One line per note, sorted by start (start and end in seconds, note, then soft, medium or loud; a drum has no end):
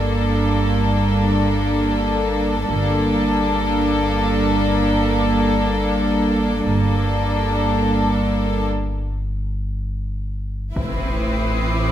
0.00 2.65 G1 medium
0.00 2.65 G2 soft
0.00 2.65 A#3 soft
0.00 2.66 D4 soft
0.00 2.65 A4 soft
2.68 3.31 G1 soft
2.68 6.62 G1 medium
2.68 6.61 G2 soft
2.68 6.62 A#3 soft
2.68 6.63 D4 soft
2.68 6.62 A4 soft
6.65 10.73 G1 medium
6.65 7.29 G1 soft
6.65 8.65 G2 soft
6.65 8.66 A#3 soft
6.65 8.66 D4 soft
6.65 8.66 A4 soft
10.75 11.92 A1 medium
10.75 11.92 A1 soft
10.75 11.92 A2 soft
10.75 11.92 C4 soft
10.75 11.92 E4 soft
10.75 11.92 B4 soft
10.75 11.92 D6 soft
10.75 11.92 D#6 soft
10.75 11.92 C7 soft
10.75 impact soft